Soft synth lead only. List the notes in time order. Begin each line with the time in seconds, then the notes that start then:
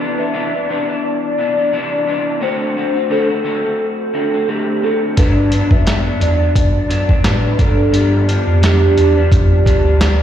Already playing: B4
0.19 E5
1.04 D5
2.43 C5
3.11 A4
3.79 A4
4.49 G4
4.84 A4
5.18 B4
5.72 E5
6.23 D5
7.27 B4
7.61 A4
7.96 G4
10.02 G4